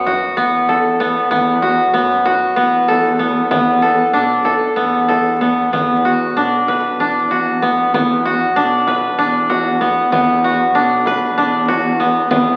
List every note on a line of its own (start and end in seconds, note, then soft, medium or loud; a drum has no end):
0.00 0.37 B3 medium
0.00 0.41 A4 medium
0.06 1.62 F#4 medium
0.06 frame drum soft
0.37 1.27 E2 medium
0.37 1.00 B3 medium
0.69 2.59 A4 medium
0.69 frame drum soft
1.00 1.30 B3 medium
1.31 1.89 E2 medium
1.31 1.93 B3 medium
1.31 frame drum soft
1.62 2.25 F#4 medium
1.93 2.22 F#2 medium
1.93 2.56 B3 medium
2.25 4.37 F#4 medium
2.25 frame drum soft
2.56 3.47 E2 medium
2.56 3.19 B3 medium
2.88 3.82 A4 medium
2.88 frame drum soft
3.19 3.50 B3 medium
3.51 4.10 E2 medium
3.51 4.76 B3 medium
3.51 frame drum medium
3.82 4.44 A4 medium
4.13 4.43 B1 medium
4.13 6.36 D4 medium
4.45 5.08 A4 medium
4.45 frame drum soft
4.76 5.69 E2 medium
4.76 5.41 B3 medium
5.08 6.99 A4 medium
5.08 frame drum soft
5.41 5.72 B3 medium
5.41 frame drum soft
5.73 6.32 E2 medium
5.73 7.62 B3 medium
5.73 frame drum soft
6.05 7.30 F#4 medium
6.05 frame drum soft
6.36 6.95 B1 medium
6.36 7.00 D4 medium
6.68 8.46 B4 medium
6.68 frame drum soft
6.99 7.90 E2 medium
6.99 8.56 D4 medium
6.99 frame drum soft
7.31 8.25 F#4 medium
7.62 7.94 B3 medium
7.94 8.52 E2 medium
7.94 9.80 B3 medium
7.94 frame drum medium
8.25 9.49 F#4 medium
8.25 frame drum soft
8.56 9.15 B1 medium
8.56 9.18 D4 medium
8.87 10.65 B4 medium
8.87 frame drum soft
9.18 10.08 E2 medium
9.18 10.74 D4 medium
9.18 frame drum soft
9.50 10.44 F#4 medium
9.50 frame drum soft
9.81 10.12 B3 medium
10.12 10.71 E2 medium
10.12 11.99 B3 medium
10.12 frame drum medium
10.44 11.68 F#4 medium
10.44 frame drum soft
10.74 11.33 B1 medium
10.74 11.37 D4 medium
11.06 12.56 B4 medium
11.06 frame drum soft
11.37 12.27 E2 medium
11.37 12.56 D4 medium
11.37 frame drum soft
11.68 12.56 F#4 medium
11.68 frame drum soft
12.00 12.30 B3 medium
12.30 12.56 E2 medium
12.30 12.56 B3 medium
12.30 frame drum medium